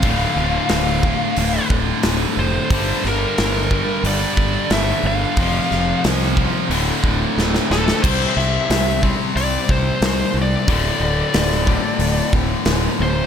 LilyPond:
<<
  \new Staff \with { instrumentName = "Lead electric guitar" } { \time 4/4 \key d \minor \tempo 4 = 90 f''2~ f''8 r4 c''8~ | c''8 bes'4. d''4 e''8 f''8~ | f''4 r2 r8 a'8 | c''8 e''4 r8 d''8 c''8 c''8 d''8~ |
d''2~ d''8 r4 c''8 | }
  \new Staff \with { instrumentName = "Distorted electric guitar" } { \clef bass \time 4/4 \key d \minor <d, a, d>4. <d, a, d>2~ <d, a, d>8 | <g, d g>4. <g, d g>2~ <g, d g>8 | <f, c f>4. <f, c f>8 <d, a, d>4. <d, a, d>8 | <c g c'>4. <c g c'>2~ <c g c'>8 |
<d, a, d>4. <d, a, d>2~ <d, a, d>8 | }
  \new Staff \with { instrumentName = "Overdriven electric guitar" } { \clef bass \time 4/4 \key d \minor <d, a, d>1 | <g, d g>1 | <f, c f>2 <d, a, d>2 | <c g c'>1 |
<d, a, d>1 | }
  \new Staff \with { instrumentName = "Distorted electric guitar" } { \clef bass \time 4/4 \key d \minor <d, a, d>2 <d, a, d>2 | <g, d g>2 <g, d g>2 | <f, c f>2 <d, a, d>2 | r1 |
r1 | }
  \new Staff \with { instrumentName = "Fingered electric bass" } { \clef bass \time 4/4 \key d \minor d,,8 d,,8 d,,4 d,,8 d,,8 d,,8 f,,8 | g,,8 g,,8 g,,4 g,,8 g,,8 g,,8 g,,8 | f,,8 f,,8 c,4 d,,8 d,,8 d,,8 d,,8 | c,8 c,8 c,4 c,8 c,8 c,8 c,8 |
d,,8 d,,8 d,,4 d,,8 d,,8 d,,8 d,,8 | }
  \new DrumStaff \with { instrumentName = "Drums" } \drummode { \time 4/4 <hho bd>4 <hho sn>8 bd8 hho8 bd8 <hho sn>4 | <hho bd>8 sn8 <hho sn>8 bd8 hho8 bd8 <hho sn>4 | <hho bd>8 sn8 <hho sn>16 sn16 bd8 hho8 bd8 sn16 sn16 sn16 sn16 | <cymc bd>8 sn8 <hho sn>8 bd8 hho8 bd8 <hho sn>4 |
<hho bd>4 <hho sn>16 sn16 bd8 hho8 bd8 <hho sn>4 | }
>>